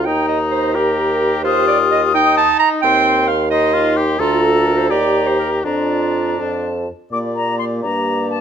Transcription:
0.05 bassoon D#2, french horn D#4, oboe D#4, clarinet G5, flute A#5
0.28 clarinet D#5
0.51 clarinet C5
0.75 oboe G4, french horn G4, clarinet A#4
1.44 oboe F4, french horn G4, clarinet C5, flute D#6
1.68 clarinet D5
1.91 clarinet D#5
2.14 oboe D#4, french horn D#4, clarinet G5
2.37 clarinet A5
2.59 clarinet A#5
2.82 bassoon D#2, oboe C4, clarinet G5, flute C6
3.28 clarinet F5
3.50 oboe D#4, french horn D#4, clarinet D#5, flute C6
3.73 oboe F4
3.96 oboe G4
4.19 bassoon D2, clarinet F4, french horn F4, oboe A4, flute A#5
4.43 clarinet A4
4.66 clarinet A#4
4.78 clarinet C5
4.89 bassoon D#2, oboe G4, french horn G4, clarinet D5, flute A#5
5.27 clarinet C5
5.39 clarinet A#4
5.64 bassoon F2, oboe D4, french horn D4, clarinet F4, flute A#5
6.39 bassoon F2, french horn F4, flute A5
7.12 bassoon A#2, french horn A#3, clarinet G4, oboe D5, flute D6
7.36 flute A#5
7.59 flute C6
7.82 bassoon G2, french horn A#3, oboe D5, flute A#5
8.30 flute A5

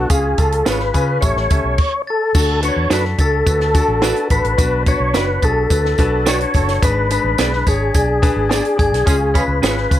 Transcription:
0.09 fingered electric bass C#2, grand piano C#3 C#4 F4 G#4 F5, tonewheel organ G#4, kick, closed hi-hat, tambourine
0.37 fingered electric bass C#2, grand piano C#4 F4 G#4 F5, tonewheel organ A4, kick, closed hi-hat, tambourine
0.52 closed hi-hat
0.65 fingered electric bass G#1, grand piano C#4 F4 G#4 F5, clean electric guitar C#4 F4 G#4 C#5, tonewheel organ B4, snare, closed hi-hat, tambourine
0.79 snare
0.94 fingered electric bass C#3, grand piano C#4 F4 G#4 G#5, kick, closed hi-hat, tambourine
1.21 fingered electric bass A1, grand piano A2 C#4 G4 A4 E5, tonewheel organ C#5, kick, closed hi-hat, tambourine
1.36 fingered electric bass A1, snare
1.50 fingered electric bass C#2, grand piano C#4 G4 A4 E5, kick, closed hi-hat, tambourine
1.64 fingered electric bass B1
1.78 kick, crash
2.07 tonewheel organ A4, glockenspiel A6
2.35 fingered electric bass D2, grand piano D3 D4 F#4 A4, kick, crash, tambourine
2.62 grand piano D4 F#4 B4, tonewheel organ C#5, glockenspiel C#7, closed hi-hat, tambourine
2.76 fingered electric bass E2
2.90 fingered electric bass F#2, clean electric guitar D4 F#4 A4 D5, grand piano D4 F#4 A4, tonewheel organ B4, glockenspiel B6, snare, closed hi-hat, tambourine
3.04 snare
3.18 fingered electric bass C#2, grand piano D4 F#4 A4, tonewheel organ A4, glockenspiel A6, kick, closed hi-hat, tambourine
3.46 fingered electric bass D2, grand piano D4 F#4 B4, kick, closed hi-hat, tambourine
3.60 snare
3.74 grand piano D4 F#4 A4, kick, closed hi-hat, tambourine
3.88 fingered electric bass A1
4.02 grand piano D4 F#4 B4, clean electric guitar D4 F#4 A4 D5, snare, closed hi-hat, tambourine
4.16 closed hi-hat
4.30 fingered electric bass A1, grand piano D4 F#4 A4, tonewheel organ B4, glockenspiel B6, kick, closed hi-hat, tambourine
4.45 fingered electric bass A1, closed hi-hat
4.58 fingered electric bass B1, grand piano B2 D4 F#4 B4, kick, closed hi-hat, tambourine
4.86 grand piano D4 F#4 B4, tonewheel organ C#5, glockenspiel C#7, kick, closed hi-hat, tambourine
5.00 fingered electric bass B1
5.14 fingered electric bass F#1, clean electric guitar D4 F#4 B4 D5, grand piano D4 F#4 C#5, tonewheel organ B4, glockenspiel B6, snare, closed hi-hat, tambourine
5.42 fingered electric bass B1, grand piano D4 F#4 G#4, tonewheel organ A4, glockenspiel A6, kick, closed hi-hat, tambourine
5.70 fingered electric bass D2, grand piano D4 F#4 B4, kick, closed hi-hat, tambourine
5.85 snare
5.98 fingered electric bass B1, grand piano D4 F#4 B4, kick, closed hi-hat, tambourine
6.26 clean electric guitar D4 F#4 B4 D5, grand piano D4 F#4 B4, tonewheel organ C#5, glockenspiel C#7, snare, closed hi-hat, tambourine
6.41 closed hi-hat
6.54 fingered electric bass F#1, grand piano D4 F#4 A4, kick, closed hi-hat, tambourine
6.68 snare, closed hi-hat
6.82 fingered electric bass G#1, grand piano G#2 D4 G#4 B4, tonewheel organ B4, glockenspiel B6, kick, closed hi-hat, tambourine
7.10 grand piano D4 G#4 B4, tonewheel organ B4, glockenspiel B6, closed hi-hat, tambourine
7.24 fingered electric bass A1
7.38 fingered electric bass B1, clean electric guitar B3 D4 G#4 D5, grand piano D4 G#4 B4, snare, closed hi-hat, tambourine
7.53 snare
7.67 fingered electric bass G#1, grand piano D4 G#4 C#5, tonewheel organ G#4, glockenspiel G#6, kick, closed hi-hat, tambourine
7.95 fingered electric bass B1, grand piano D4 G#4 D5, tonewheel organ G#4, glockenspiel G#6, kick, closed hi-hat, tambourine
8.22 grand piano D4 G#4 B4, kick, closed hi-hat, tambourine
8.36 fingered electric bass G#1
8.49 clean electric guitar B3 D4 G#4 D5, grand piano D4 G#4 D5, snare, closed hi-hat, tambourine
8.65 closed hi-hat
8.76 fingered electric bass G#1, grand piano D4 G#4 D5, tonewheel organ G#4, glockenspiel G#6, kick, closed hi-hat, tambourine
8.92 fingered electric bass B1, snare, closed hi-hat
9.05 fingered electric bass C#2, grand piano C#3 C#4 F4 G#4, horn section G#3 C#4 F4 G#4, kick, closed hi-hat, tambourine
9.34 horn section G#3 C#4 F4 G#4, grand piano C#4 F4 G#4, tonewheel organ B4, glockenspiel B6, kick, closed hi-hat, tambourine
9.48 fingered electric bass C#2
9.61 fingered electric bass G#1, grand piano C#4 F4 G#4, clean electric guitar C#4 F4 G#4 C#5, snare, closed hi-hat, tambourine
9.77 snare
9.90 fingered electric bass C#2, grand piano C#4 F4 B4, kick, closed hi-hat, tambourine

